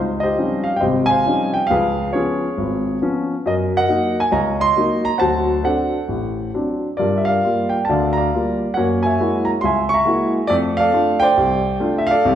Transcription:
0.00 0.32 C#2 medium
0.00 0.37 D#4 medium
0.00 0.78 F4 medium
0.20 1.08 G4 medium
0.20 0.79 C5 medium
0.20 0.68 D#5 medium
0.38 0.69 F3 soft
0.38 0.69 G3 soft
0.38 0.69 C4 soft
0.38 0.70 C#4 soft
0.38 0.70 D#4 medium
0.64 0.81 F5 medium
0.76 1.66 D#5 medium
0.76 0.84 G5 medium
0.81 1.21 G#1 medium
0.81 1.21 C3 medium
0.81 1.09 C5 medium
1.06 1.65 F5 medium
1.06 1.50 G#5 loud
1.11 1.66 C5 medium
1.26 1.58 F3 soft
1.26 1.58 G3 soft
1.26 1.58 C4 soft
1.26 1.58 C#4 soft
1.26 1.58 D#4 medium
1.54 1.70 G5 medium
1.67 2.09 C#2 medium
1.67 2.09 F3 medium
1.67 2.14 F5 medium
1.71 2.15 G#4 medium
1.71 2.55 B4 medium
2.13 2.46 F3 soft
2.13 2.46 B3 soft
2.13 2.46 C#4 medium
2.13 2.99 F4 soft
2.13 2.99 G#4 medium
2.13 2.98 C#5 medium
2.58 2.96 G#1 medium
3.02 3.33 F3 medium
3.02 3.33 B3 soft
3.02 3.34 C#4 medium
3.46 3.83 F#2 medium
3.46 3.75 A#4 medium
3.46 3.54 D#5 medium
3.77 4.59 A#4 medium
3.77 4.31 D#5 medium
3.77 4.21 F#5 loud
3.88 4.19 F#3 soft
3.88 4.20 A#3 soft
3.88 4.20 D#4 medium
4.20 4.34 G#5 medium
4.32 4.70 C#2 medium
4.32 5.16 C#5 medium
4.32 4.59 D#5 medium
4.32 4.63 A#5 medium
4.60 5.15 D#5 medium
4.60 5.07 C6 loud
4.77 5.08 F#3 medium
4.77 5.08 A#3 medium
4.77 5.08 D#4 medium
5.05 5.19 A#5 loud
5.18 5.59 D2 medium
5.18 5.59 F#3 medium
5.18 5.62 C5 medium
5.18 5.63 F#5 medium
5.18 5.65 A5 medium
5.64 5.95 F#3 soft
5.64 5.95 C4 soft
5.64 5.96 D4 medium
5.64 6.50 A4 soft
5.64 6.50 C5 soft
5.64 6.50 F#5 medium
6.08 6.48 A1 medium
6.54 6.86 F#3 soft
6.54 6.87 C4 soft
6.54 6.87 D4 medium
6.97 7.38 G2 medium
6.97 7.43 F4 medium
6.97 7.26 A#4 medium
6.97 7.20 D5 medium
7.17 7.28 E5 medium
7.25 8.14 A#4 soft
7.25 7.88 D5 medium
7.25 7.73 F5 medium
7.44 7.76 G3 soft
7.44 7.76 A#3 soft
7.44 7.76 F4 medium
7.69 7.85 G5 medium
7.85 8.18 A5 medium
7.89 8.27 D2 medium
7.89 8.27 D3 medium
7.89 8.16 D5 medium
7.89 8.16 F5 medium
8.13 8.56 A#5 medium
8.17 8.72 D5 medium
8.17 8.72 F5 medium
8.34 8.64 G3 soft
8.34 8.64 A#3 soft
8.34 8.64 F4 medium
8.74 9.15 F#2 medium
8.74 9.15 A#3 medium
8.74 9.59 A#4 medium
8.74 9.04 C#5 medium
8.74 8.81 F#5 medium
9.03 9.88 C#5 medium
9.03 9.63 E5 medium
9.03 9.49 G#5 medium
9.20 9.51 G#3 soft
9.20 9.51 A#3 soft
9.20 9.51 E4 soft
9.20 9.51 F#4 medium
9.45 9.50 A#5 medium
9.61 10.01 C#2 medium
9.61 9.92 E5 medium
9.61 9.89 C6 medium
9.65 10.47 G#5 medium
9.89 10.31 C#6 loud
9.94 10.46 E5 medium
9.94 10.46 A#5 medium
10.05 10.37 G#3 medium
10.05 10.37 A#3 soft
10.05 10.37 E4 medium
10.05 10.37 F#4 medium
10.47 10.87 F2 medium
10.47 10.88 A3 medium
10.47 10.78 A4 medium
10.47 10.54 D5 loud
10.77 11.63 A4 medium
10.77 11.22 D5 medium
10.77 11.19 F5 loud
10.93 11.25 A3 medium
10.93 11.25 D4 medium
10.93 11.25 F4 medium
11.20 12.07 C5 medium
11.20 12.07 D5 medium
11.20 11.96 G5 loud
11.37 11.76 C2 medium
11.80 12.12 A3 medium
11.80 12.12 D4 medium
11.80 12.12 F4 medium
11.98 12.09 E5 medium
12.07 12.35 A4 medium
12.07 12.35 F5 loud
12.11 12.35 D5 medium
12.25 12.35 C2 medium
12.25 12.35 C3 medium

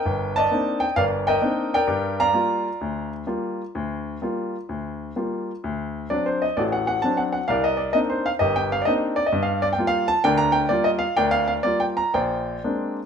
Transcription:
0.00 0.79 A#4 medium
0.00 0.36 D#5 medium
0.00 0.37 G5 medium
0.05 0.46 G1 medium
0.36 0.96 D5 medium
0.36 1.24 D#5 medium
0.36 0.84 A5 medium
0.51 0.84 A#3 medium
0.51 0.84 C4 soft
0.51 0.84 D4 soft
0.51 0.84 D#4 medium
0.80 0.96 G5 medium
0.96 1.36 G1 medium
0.96 1.27 A#4 medium
0.96 1.73 D5 medium
0.96 1.03 F5 medium
1.27 1.74 A#4 medium
1.27 1.84 D#5 medium
1.27 1.73 G5 medium
1.41 1.74 A#3 medium
1.41 1.75 C4 soft
1.41 1.75 D4 soft
1.41 1.75 D#4 medium
1.74 2.63 A#4 medium
1.74 2.19 D5 medium
1.74 2.21 G5 medium
1.87 2.28 G2 medium
1.87 2.28 G3 medium
2.20 3.10 D5 medium
2.20 3.10 F5 medium
2.20 3.10 A#5 loud
2.33 2.67 G3 soft
2.33 2.67 A#3 soft
2.33 2.67 F4 medium
2.81 3.22 D2 medium
3.27 3.61 G3 soft
3.27 3.61 A#3 soft
3.27 3.61 F4 medium
3.75 4.16 D2 medium
4.22 4.55 G3 soft
4.22 4.55 A#3 soft
4.22 4.55 F4 soft
4.69 5.10 D2 medium
5.16 5.50 G3 soft
5.16 5.50 A#3 soft
5.16 5.50 F4 medium
5.64 6.05 D2 medium
6.10 6.44 F#3 soft
6.10 6.45 C4 soft
6.10 6.45 D4 medium
6.10 6.27 D5 medium
6.26 6.41 C5 medium
6.42 6.58 D#5 medium
6.57 6.97 A1 medium
6.57 6.97 A2 medium
6.57 7.46 F#4 medium
6.57 7.46 A4 medium
6.57 6.62 D5 medium
6.72 6.86 F#5 medium
6.87 7.04 F#5 medium
7.02 7.36 F#3 soft
7.02 7.37 C4 soft
7.02 7.37 D4 medium
7.02 7.19 A5 medium
7.17 7.22 F#5 medium
7.32 7.49 F#5 medium
7.48 7.89 C2 medium
7.48 8.38 A#4 medium
7.48 7.76 D5 medium
7.48 7.64 F5 medium
7.64 7.80 D#5 medium
7.77 7.93 D5 medium
7.93 8.28 A#3 soft
7.93 8.28 C4 soft
7.93 8.28 D4 soft
7.93 8.28 D#4 medium
7.93 7.98 D#5 medium
8.10 8.24 C5 medium
8.26 8.31 F5 medium
8.39 8.81 G1 medium
8.39 9.28 G4 medium
8.39 9.28 A#4 medium
8.39 8.56 D#5 medium
8.56 8.72 G5 medium
8.72 8.83 F5 medium
8.82 8.86 D5 medium
8.82 8.92 D#5 medium
8.87 9.19 A#3 soft
8.87 9.19 C4 soft
8.87 9.19 D4 soft
8.87 9.19 D#4 medium
9.16 9.26 D5 medium
9.26 9.41 D#5 medium
9.33 9.72 G2 medium
9.43 9.64 F5 medium
9.62 9.67 D5 medium
9.73 9.87 G5 medium
9.78 10.11 G3 medium
9.78 10.11 A#3 medium
9.78 10.11 F4 medium
9.87 10.07 F5 medium
10.08 10.24 A5 loud
10.24 10.65 D2 medium
10.24 10.65 D3 medium
10.24 11.14 A#4 medium
10.24 10.67 D5 medium
10.24 10.38 G5 loud
10.38 10.55 A#5 loud
10.52 10.70 G5 medium
10.69 11.04 G3 medium
10.69 11.04 A#3 medium
10.69 11.04 F4 medium
10.69 10.84 D5 medium
10.84 10.89 D#5 medium
10.99 11.15 F5 medium
11.17 11.58 D2 medium
11.17 12.09 A#4 medium
11.17 11.62 D5 medium
11.17 11.31 G5 loud
11.31 11.46 F5 medium
11.48 11.53 F5 medium
11.63 11.98 G3 soft
11.63 11.99 A#3 soft
11.63 11.99 F4 medium
11.63 11.80 D5 medium
11.80 11.85 G5 medium
11.97 12.13 A#5 medium
12.14 12.56 A#1 medium
12.14 13.06 C5 medium
12.14 13.06 D5 medium
12.14 12.92 G5 medium
12.64 12.98 G#3 soft
12.64 12.98 A#3 soft
12.64 12.98 C4 soft
12.64 12.98 D4 soft

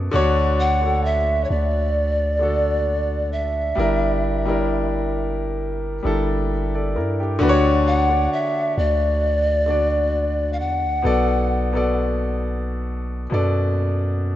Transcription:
0.00 0.15 B2 medium
0.00 0.16 B3 medium
0.00 0.15 A4 medium
0.00 0.15 D5 medium
0.11 1.46 D2 loud
0.11 0.78 D3 loud
0.11 0.79 D4 loud
0.11 0.80 F#4 medium
0.16 0.80 C#5 loud
0.60 1.07 F#5 loud
0.82 2.31 D3 medium
0.82 2.32 D4 medium
0.82 2.33 F#4 medium
0.82 2.33 A4 medium
1.05 1.46 E5 loud
1.44 1.52 C#5 medium
1.50 3.73 D2 medium
1.50 3.32 D5 loud
2.39 3.69 D3 medium
2.39 3.70 D4 medium
2.39 3.70 F#4 medium
2.43 3.71 A4 medium
3.32 4.64 E5 medium
3.75 6.01 G1 loud
3.75 4.42 G3 medium
3.75 4.43 D4 medium
3.75 4.43 E4 medium
3.79 4.44 A#4 loud
4.45 5.95 G3 medium
4.45 5.96 D4 medium
4.45 5.96 E4 medium
4.50 5.97 A#4 medium
6.03 6.97 G1 loud
6.03 7.33 G3 medium
6.03 6.50 D4 medium
6.03 6.50 E4 medium
6.07 6.51 A4 medium
6.75 6.95 A4 medium
6.75 6.95 D5 medium
6.96 7.39 G2 medium
6.96 7.19 E4 medium
6.96 7.19 A#4 medium
7.20 7.38 D4 medium
7.20 7.63 G4 medium
7.39 8.28 D2 loud
7.39 8.05 D3 loud
7.39 8.06 D4 loud
7.39 8.07 F#4 loud
7.39 7.49 B4 medium
7.49 8.11 C#5 loud
7.88 8.34 F#5 loud
8.09 9.59 D3 medium
8.09 9.59 D4 medium
8.09 9.60 F#4 medium
8.09 9.61 D5 medium
8.33 8.80 E5 loud
8.78 10.61 D2 loud
8.78 10.55 D5 loud
9.66 10.96 D3 medium
9.66 10.97 D4 medium
9.66 10.97 F#4 medium
9.70 10.98 D5 medium
10.53 10.61 F5 medium
10.59 10.85 E2 medium
10.59 11.96 F#5 loud
10.84 11.04 D2 loud
11.02 13.28 B1 loud
11.02 11.69 B2 medium
11.02 11.70 B3 medium
11.02 11.70 A4 medium
11.07 11.71 D5 loud
11.72 13.22 B2 medium
11.72 13.23 B3 medium
11.72 13.24 A4 medium
11.77 13.24 D5 loud
13.30 14.36 F#2 loud
13.30 14.36 B2 medium
13.30 14.36 B3 medium
13.30 14.36 A4 medium
13.30 14.36 D5 loud

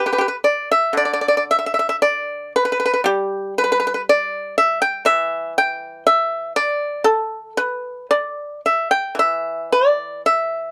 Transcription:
0.06 0.11 G4 soft
0.06 0.12 B4 medium
0.12 0.17 G4 soft
0.12 0.20 B4 medium
0.18 0.26 G4 medium
0.18 0.27 B4 medium
0.28 0.35 B4 soft
0.44 0.68 D5 medium
0.71 0.95 E5 medium
0.93 4.06 D3 medium
0.97 1.04 D5 medium
1.05 1.12 D5 medium
1.13 1.20 D5 medium
1.21 1.27 D5 medium
1.28 1.35 D5 medium
1.37 1.43 D5 medium
1.51 1.57 E5 medium
1.59 1.65 E5 soft
1.66 1.73 E5 medium
1.74 1.78 E5 medium
1.79 1.87 E5 medium
1.89 1.96 E5 medium
2.02 2.52 D5 medium
2.56 2.63 B4 medium
2.65 2.71 B4 medium
2.72 2.78 B4 medium
2.80 2.84 B4 medium
2.86 2.92 B4 medium
2.94 3.00 B4 medium
3.04 6.04 G3 medium
3.04 3.53 G4 medium
3.58 3.63 B4 medium
3.64 3.71 B4 medium
3.72 3.79 B4 medium
3.80 3.86 B4 medium
3.87 3.93 B4 medium
3.94 4.00 B4 medium
4.09 4.55 D5 medium
4.58 4.81 E5 medium
4.82 5.05 G5 medium
5.05 8.08 E3 medium
5.05 5.52 E5 medium
5.58 6.03 G5 medium
6.07 6.52 E5 medium
6.56 7.02 D5 medium
7.04 7.52 A4 medium
7.57 8.06 B4 medium
8.11 8.60 D5 medium
8.66 8.90 E5 medium
8.91 9.16 G5 medium
9.15 10.71 E3 soft
9.19 9.69 E5 medium
9.72 10.21 D5 medium
10.26 10.71 E5 medium

